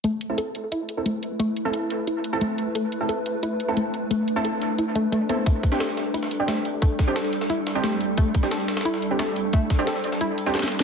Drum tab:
HH |x---x---x---x---x---x---x---x---|x---x---x---x---x---x---x---x---|x---x---x---x---x---x---x---x---|x---x---x---x---x---x---x---x---|
SD |--------------------------------|--------------------------------|--------------------------------|--------------------------------|
BD |--------------------------------|--------------------------------|--------------------------------|--------------------------------|

HH |x---x---x---x---x---x---x---x---|x---x---x---x---x---x---x---x---|x---x---x---x-xxx---x---x---x---|x---x---x---x---x---x---xxxxx---|
SD |------o-o-o-o-----o-----o-------|----o---o-o---o-----o---o-------|------o-o-o-o-oo--o-----o-------|----o---o-o---o-------o-ooooo---|
BD |o---o---------------------------|o---o---------------------------|o---o---------------------------|o---o---------------------------|